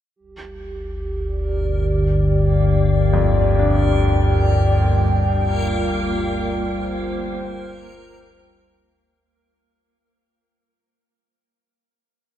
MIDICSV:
0, 0, Header, 1, 5, 480
1, 0, Start_track
1, 0, Key_signature, -2, "minor"
1, 0, Tempo, 1121495
1, 74, Time_signature, 4, 2, 24, 8
1, 3434, Tempo, 1136364
1, 5273, End_track
2, 0, Start_track
2, 0, Title_t, "Analog synth pad"
2, 0, Program_c, 0, 89
2, 69, Note_on_c, 0, 67, 55
2, 537, Note_on_c, 0, 74, 71
2, 940, Note_on_c, 0, 79, 78
2, 1998, Note_on_c, 0, 55, 61
2, 2312, Note_on_c, 0, 65, 66
2, 2761, Note_off_c, 0, 67, 0
2, 2765, Note_off_c, 0, 74, 0
2, 2855, Note_on_c, 0, 72, 78
2, 3915, Note_off_c, 0, 72, 0
2, 3915, Note_off_c, 0, 79, 0
2, 3916, Note_off_c, 0, 55, 0
2, 3916, Note_off_c, 0, 65, 0
2, 5273, End_track
3, 0, Start_track
3, 0, Title_t, "Synth texture"
3, 0, Program_c, 1, 99
3, 79, Note_on_c, 1, 70, 76
3, 80, Note_on_c, 1, 58, 69
3, 3928, Note_off_c, 1, 70, 0
3, 3929, Note_off_c, 1, 58, 0
3, 5273, End_track
4, 0, Start_track
4, 0, Title_t, "Grand piano"
4, 0, Program_c, 2, 0
4, 148, Control_c, 2, 64, 127
4, 1340, Note_on_c, 2, 41, 61
4, 1538, Note_on_c, 2, 62, 60
4, 2005, Control_c, 2, 64, 0
4, 4215, Note_off_c, 2, 41, 0
4, 4414, Note_off_c, 2, 62, 0
4, 5273, End_track
5, 0, Start_track
5, 0, Title_t, "Synth drone"
5, 0, Program_c, 3, 95
5, 82, Note_on_c, 3, 38, 67
5, 84, Note_on_c, 3, 31, 70
5, 3968, Note_off_c, 3, 38, 0
5, 3969, Note_off_c, 3, 31, 0
5, 5273, End_track
0, 0, End_of_file